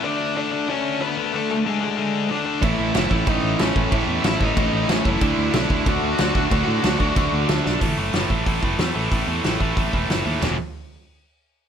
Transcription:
<<
  \new Staff \with { instrumentName = "Lead electric guitar" } { \time 4/4 \key a \lydian \tempo 4 = 185 <d' d''>4 <d' d''>4 <cis' cis''>4 <b b'>4 | <a a'>8 <a a'>8 <gis gis'>8 <gis gis'>4. <d' d''>4 | <e' e''>4 <e' e''>4 <dis' dis''>4 <cis' cis''>4 | <e' e''>4 <e' e''>8 <dis' dis''>4. <cis' cis''>8 <e' e''>8~ |
<e' e''>4 <e' e''>4 <fis' fis''>2~ | <fis' fis''>2. r4 | r1 | r1 |
r1 | }
  \new Staff \with { instrumentName = "Distorted electric guitar" } { \time 4/4 \key a \lydian r1 | r1 | <a, e a cis' e'>2 <a, e a cis' e'>2 | <a, e a cis' e'>2 <a, e a cis' e'>2 |
<d a d' fis'>2 <d a d' fis'>2 | <d a d' fis'>2 <d a d' fis'>2 | r1 | r1 |
r1 | }
  \new Staff \with { instrumentName = "Distorted electric guitar" } { \clef bass \time 4/4 \key a \lydian <d a d'>4 <d a d'>8 <d a d'>8 <d a d'>4 <d a d'>8 <d a d'>8 | <d a d'>4 <d a d'>8 <d a d'>8 <d a d'>4 <d a d'>8 <d a d'>8 | <a, e a>4 <a, e a>8 <a, e a>8 <a, e a>4 <a, e a>8 <a, e a>8 | <a, e a>4 <a, e a>8 <a, e a>8 <a, e a>4 <a, e a>8 <a, e a>8 |
<d a d'>4 <d a d'>8 <d a d'>8 <d a d'>4 <d a d'>8 <d a d'>8 | <d a d'>4 <d a d'>8 <d a d'>8 <d a d'>4 <d a d'>8 <d a d'>8 | <a, e a>8 <a, e a>8 <a, e a>8 <a, e a>8 <a, e a>8 <a, e a>8 <a, e a>8 <a, e a>8 | <a, e a>8 <a, e a>8 <a, e a>8 <a, e a>8 <a, e a>8 <a, e a>8 <a, e a>8 <a, e a>8 |
<e, b, e>8 r2. r8 | }
  \new Staff \with { instrumentName = "Distorted electric guitar" } { \clef bass \time 4/4 \key a \lydian r1 | r1 | <a, e a>4 <a, e a>8 <a, e a>8 <a, e a>4 <a, e a>8 <a, e a>8 | <a, e a>4 <a, e a>8 <a, e a>8 <a, e a>4 <a, e a>8 <a, e a>8 |
<d a d'>4 <d a d'>8 <d a d'>8 <d a d'>4 <d a d'>8 <d a d'>8 | <d a d'>4 <d a d'>8 <d a d'>8 <d a d'>4 <d a d'>8 <d a d'>8 | <a, e a>8 <a, e a>8 <a, e a>8 <a, e a>8 <a, e a>8 <a, e a>8 <a, e a>8 <a, e a>8 | <a, e a>8 <a, e a>8 <a, e a>8 <a, e a>8 <a, e a>8 <a, e a>8 <a, e a>8 <a, e a>8 |
<e, b, e>8 r2. r8 | }
  \new Staff \with { instrumentName = "Picked electric bass" } { \clef bass \time 4/4 \key a \lydian r1 | r1 | a,,8 a,,8 fis,,8 a,,8 a,,8 a,,8 a,,8 a,,8 | a,,8 e,8 a,,8 a,,8 a,,8 a,,8 a,,8 fis,,8 |
d,8 d,8 b,,8 d,8 d,8 d,8 d,8 d,8 | d,8 a,8 d,8 d,8 d,8 d,8 d,8 b,,8 | a,,8 fis,,8 fis,,8 a,,8 a,,8 fis,,8 e,8 a,,8 | a,,8 e,8 a,,8 a,,8 a,,8 e,,8 fis,,8 dis,8 |
e,,8 r2. r8 | }
  \new DrumStaff \with { instrumentName = "Drums" } \drummode { \time 4/4 r4 r4 r4 r4 | r4 r4 r4 r4 | <cymc bd>4 <cymc sn>8 bd8 <cymc bd>4 <cymc sn>8 bd8 | <cymc bd>4 <cymc sn>8 bd8 <cymc bd>4 <cymc sn>8 bd8 |
<cymc bd>4 <cymc sn>8 bd8 <cymc bd>4 <cymc sn>8 bd8 | <cymc bd>4 <cymc sn>8 bd8 <cymc bd>4 <cymc sn>8 sn8 | <hho bd>4 <hho sn>8 bd8 <hho bd>8 bd8 <hho sn>4 | <hho bd>4 <hho sn>8 bd8 <hho bd>8 bd8 <hho sn>4 |
<cymc sn tomfh>4 r4 r4 r4 | }
>>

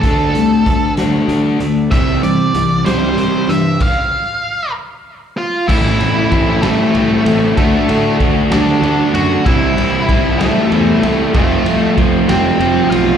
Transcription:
<<
  \new Staff \with { instrumentName = "Lead electric guitar" } { \time 6/8 \key a \minor \tempo 4. = 64 a'4. r4. | e''8 d''4 c''4 e''8 | f''4. r4 <f' f''>8 | <e' e''>4. <a a'>4. |
<a a'>4 r8 <d' d''>4 <fis' fis''>8 | <e' e''>4. <a a'>4. | <a a'>4 r8 <c' c''>4 <f' f''>8 | }
  \new Staff \with { instrumentName = "Clean electric guitar" } { \time 6/8 \key a \minor d8 a8 a8 fis'8 d'8 a8 | c8 e8 g8 e'8 c'8 g8 | r2. | r2. |
r2. | r2. | r2. | }
  \new Staff \with { instrumentName = "Distorted electric guitar" } { \time 6/8 \key a \minor <d a d'>8 <d a>8 <d a>8 <d a d'>4 <d a>8 | <c e g>8 <c e>8 <c e>8 <c e g>4 <c e>8 | r2. | <a, e a c' e'>8 <a c' e'>8 <e a c' e'>8 <a c' e'>8 <e a c' e'>8 <a c' e'>8 |
<d a d' fis'>8 <a d' fis'>8 <d a d' fis'>8 <a d' fis'>8 <d a d' fis'>8 <a d' fis'>8 | <c e g c' e'>8 <g c' e'>8 <e g c' e'>8 <g c' e'>8 <e g c' e'>8 <g c' e'>8 | <f a c' f'>8 <a c' f'>8 <f a c' f'>8 <a c' f'>8 <f a c' f'>8 <a c' f'>8 | }
  \new Staff \with { instrumentName = "Overdriven electric guitar" } { \time 6/8 \key a \minor r2. | <c g c'>8 <c g>8 <c g>8 <c g c'>4 <c g>8 | r2. | <a, e a c' e'>8 <a c' e'>8 <e a c' e'>8 <a, e a c' e'>8 <e a c' e'>4 |
<d a d' fis'>8 <a d' fis'>8 <d a d' fis'>8 <d a d' fis'>8 <d a d' fis'>4 | <c e g c' e'>8 <g c' e'>8 <e g c' e'>8 <c e g c' e'>8 <e g c' e'>4 | <f a c' f'>8 <a c' f'>8 <f a c' f'>8 <f a c' f'>8 <f a c' f'>4 | }
  \new Staff \with { instrumentName = "Picked electric bass" } { \clef bass \time 6/8 \key a \minor d,8 c,8 d,4 d,8 d,8 | c,8 c8 c,8 c,8 c,8 g,8 | r2. | a,,8 a,,8 a,,4 c,8 a,,8 |
d,8 a,8 d,8 d,8 d,8 fis,8 | c,8 c,8 c,4 e,8 c,8 | f,,8 c,8 f,,8 f,,8 f,,8 b,,8 | }
  \new DrumStaff \with { instrumentName = "Drums" } \drummode { \time 6/8 <hh bd>8 hh8 <hh bd>8 <hh sn>8 hh8 hh8 | <hh bd>8 hh8 hh8 <hh sn>8 hh8 hh8 | <cymc bd>4. r4. | <cymc bd>8 cymr8 <bd cymr>8 <cymr sn>8 cymr8 cymr8 |
<bd cymr>8 cymr8 <bd cymr>8 <cymr sn>8 cymr8 cymr8 | <bd cymr>8 cymr8 <bd cymr>8 <cymr sn>8 cymr8 cymr8 | <bd cymr>8 cymr8 <bd cymr>8 <cymr sn>8 cymr8 cymr8 | }
>>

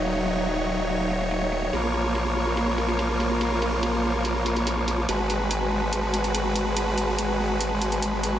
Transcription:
<<
  \new Staff \with { instrumentName = "Supersaw synth" } { \time 4/4 \key bes \phrygian \tempo 4 = 143 << { des''1~ | des''1~ | des''1 | ces''1~ |
ces''1 | } \\ { <ges ees'>1 | <bes f'>1~ | <bes f'>1 | <aes ges'>1~ |
<aes ges'>1 | } >> }
  \new Staff \with { instrumentName = "Wobble bass" } { \clef bass \time 4/4 \key bes \phrygian ees,,1 | bes,,1~ | bes,,1 | aes,,1~ |
aes,,1 | }
  \new DrumStaff \with { instrumentName = "Drums" } \drummode { \time 4/4 hh8 hh8 hh4 hh8 hh16 hh16 hh8 hh8 | hh8 hh8 hh4 hh8 hh16 hh16 hh8 hh8 | hh8 hh8 hh4 hh8 hh16 hh16 hh8 hh8 | hh8 hh8 hh4 hh8 hh16 hh16 hh8 hh8 |
hh8 hh8 hh4 hh8 hh16 hh16 hh8 hh8 | }
>>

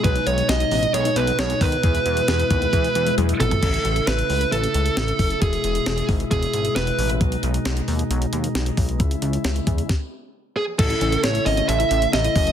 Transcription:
<<
  \new Staff \with { instrumentName = "Lead electric guitar" } { \time 4/4 \key a \lydian \tempo 4 = 134 b'8 cis''8 dis''4 cis''8 b'8 cis''8 b'8~ | b'2. r8 a'8~ | a'4 b'4 a'2 | gis'4. r8 gis'4 b'8. r16 |
r1 | r2. r8 gis'8 | a'4 cis''8 dis''8 e''4 dis''4 | }
  \new Staff \with { instrumentName = "Synth pluck" } { \time 4/4 \key a \lydian gis'16 dis'16 b16 gis16 gis'16 dis'16 b16 gis16 gis'16 dis'16 b16 gis16 gis'16 dis'16 b16 gis16 | gis'16 e'16 b16 gis16 gis'16 e'16 b16 gis16 gis'16 e'16 b16 gis16 gis'16 e'16 b16 gis16 | r1 | r1 |
r1 | r1 | a'16 e'16 cis'16 a16 a'16 e'16 cis'16 a16 a'16 e'16 cis'16 a16 a'16 e'16 cis'16 a16 | }
  \new Staff \with { instrumentName = "Pipe organ" } { \time 4/4 \key a \lydian dis'1 | e'1 | e'1 | e'1 |
dis'1 | e'2 r2 | e'1 | }
  \new Staff \with { instrumentName = "Pipe organ" } { \clef bass \time 4/4 \key a \lydian << { gis1 | gis1 | a1 | gis1~ |
gis1~ | gis2 r2 | a1 | } \\ { b,1~ | b,1 | cis1 | b,1~ |
b,1 | cis2 r2 | cis1 | } >> }
  \new Staff \with { instrumentName = "Analog synth bass" } { \clef bass \time 4/4 \key a \lydian b,,8 b,,8 b,,8 a,,8 b,,8 b,,8 b,,8 dis,8 | e,8 e,8 e,8 dis,8 e,8 e,8 e,8 gis,,8 | a,,8 a,,8 a,,8 cis,8 a,,8 cis,8 a,,8 fis,,8 | e,,8 e,,8 e,,8 gis,,8 e,,8 gis,,8 e,,8 a,,8 |
b,,8 b,,8 b,,8 dis,8 b,,8 dis,8 b,,8 b,,8 | cis,8 cis,8 cis,8 e,8 r2 | a,,8 a,,8 a,,8 gis,,8 a,,8 a,,8 a,,8 fis,,8 | }
  \new DrumStaff \with { instrumentName = "Drums" } \drummode { \time 4/4 <hh bd>16 hh16 hh16 hh16 <hh sn>16 hh16 hho16 hh16 hh16 hh16 hh16 hh16 <hh sn>16 hh16 <hho bd>16 hh16 | <hh bd>16 hh16 hh16 hh16 <hh sn>16 hh16 <hh bd>16 hh16 <hh bd>16 hh16 hh16 hh16 <hh tommh>16 hh16 <hh toml>16 <hh tomfh>16 | <cymc hh bd>16 hh16 hh16 hh16 <hh sn>16 hh16 hho16 hh16 hh16 hh16 hh16 hh16 <hh sn>16 hh16 <hho bd>16 hh16 | <hh bd>16 hh16 hh16 hh16 <hh sn>16 hh16 <hho bd>16 hh16 <hh bd>16 hh16 hh16 hh16 <hh sn>16 hh16 hho16 hh16 |
<hh bd>16 hh16 hh16 hh16 <hh sn>16 hh16 hho16 hh16 hh16 hh16 hh16 hh16 <hh sn>16 hh16 <hho bd>16 hh16 | <hh bd>16 hh16 hh16 hh16 <hh sn>16 hh16 <hh bd>16 hh16 <bd sn>4 r4 | <cymc hh bd>16 hh16 hh16 hh16 <hh sn>16 hh16 hho16 hh16 hh16 hh16 hh16 hh16 <hh sn>16 hh16 <hho bd>16 hh16 | }
>>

